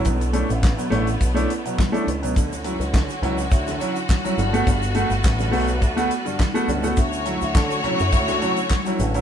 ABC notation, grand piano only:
X:1
M:4/4
L:1/16
Q:1/4=104
K:D
V:1 name="Grand piano"
[B,,F,] [DE] [A,CDE] z [DE] [B,,F,] [A,CDE] z2 [A,CDE] z [B,,F,] z [A,CDE] z [B,,F,] | D, [CE] [F,CE] z D, z [F,CE] [CE] [CE] D, [F,CE] z2 [F,CE] [G,,D,] [A,B,F] | [G,,D,] [B,F] [A,B,F] z [B,F] [G,,D,] [A,B,F] z2 [A,B,F] z [G,,D,] z [A,B,F] [G,,D,] [A,B,F] | D, [CE] [F,CE] z D, z [F,CE] [CE] [CE] D, [F,CE] z2 [F,CE] D, [F,CE] |]